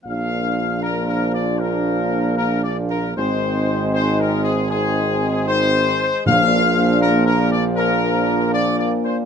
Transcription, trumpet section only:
\new Staff \with { instrumentName = "Trumpet section" } { \time 4/4 \key bes \mixolydian \tempo 4 = 78 f''4 \tuplet 3/2 { bes'8 bes'8 d''8 } bes'4 \tuplet 3/2 { bes'8 d''8 bes'8 } | c''4 \tuplet 3/2 { c''8 bes'8 aes'8 } aes'4 c''4 | f''4 \tuplet 3/2 { bes'8 bes'8 d''8 } bes'4 \tuplet 3/2 { d''8 d''8 c''8 } | }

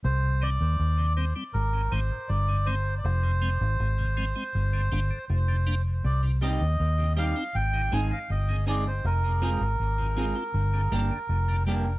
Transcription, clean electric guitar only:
\new Staff \with { instrumentName = "Clean electric guitar" } { \time 4/4 \key c \minor \tempo 4 = 80 r1 | r1 | r8 <g c' ees' g'>16 r8. <g c' ees' g'>16 r8. <aes c' ees' aes'>16 r8. <aes c' ees' aes'>16 r16 | r8 <aes c' f' aes'>16 r8. <aes c' f' aes'>16 r8. <g bes d' g'>16 r8. <g bes d' g'>16 r16 | }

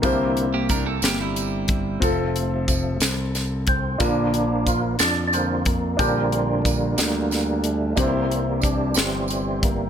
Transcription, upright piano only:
<<
  \new Staff \with { instrumentName = "Upright piano" } { \time 6/8 \key c \dorian \tempo 4. = 61 <bes c' e' g' c''>2. | <c' f' a'>2. | <d' f' bes'>2. | <d' g' bes'>2. |
<d' e' g' c''>2. | }
  \new Staff \with { instrumentName = "Upright piano" } { \clef bass \time 6/8 \key c \dorian c4. r4. | r2. | bes,4. r4. | bes,4. r4. |
c4. r4. | }
>>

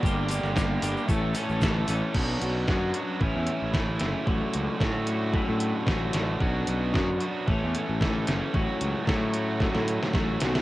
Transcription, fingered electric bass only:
\new Staff \with { instrumentName = "Fingered electric bass" } { \clef bass \time 4/4 \key d \major \tempo 4 = 113 g,,8. g,,8. g,,16 r16 a,,8 r16 a,,8. a,,16 r16 | b,,8 b,,8 fis,8 r8 a,,16 e,16 r16 a,,8. fis,,16 r16 | a,,16 r16 cis,16 r16 a,4~ a,16 a,8 r16 a,,8 a,,8 | b,,8 b,,8 fis,8 r8 a,,16 e,16 r16 a,,8. fis,,16 r16 |
a,,16 r16 cis,16 r16 a,4~ a,16 a,8 r16 a,,8 b,,8 | }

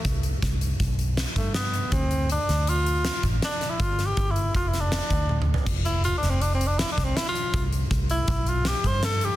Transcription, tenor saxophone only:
\new Staff \with { instrumentName = "Tenor saxophone" } { \time 5/4 \key c \major \tempo 4 = 160 r2. r8 a8 b4 | c'4 d'4 f'4. r8 \tuplet 3/2 { d'4 e'8 } | \tuplet 3/2 { f'4 g'8~ g'8 e'4 f'8 e'8 d'8~ } d'4. r8 | r8 e'8 \tuplet 3/2 { f'8 d'8 c'8 d'8 c'8 d'8 e'8 d'8 c'8 e'8 f'4~ } |
f'8 r4 e'4 f'8 g'8 c''8 a'8 g'8 | }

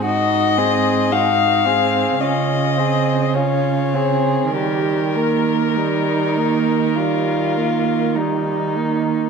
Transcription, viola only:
\new Staff \with { instrumentName = "Viola" } { \time 4/4 \key ees \mixolydian \tempo 4 = 51 ees'8 c'8 ees'8 c'8 des'8 c'8 des'8 c'8 | g8 bes8 g8 bes8 g8 bes8 g8 bes8 | }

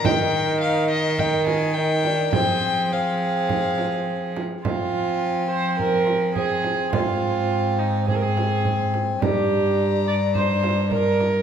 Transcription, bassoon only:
\new Staff \with { instrumentName = "Bassoon" } { \time 4/4 \key f \dorian \tempo 4 = 105 ees'2 ees'4 ees'8 d'8 | c'4 c'2~ c'8 r8 | c'2. c'4 | c'2 c'2 |
d'2. d'8 r8 | }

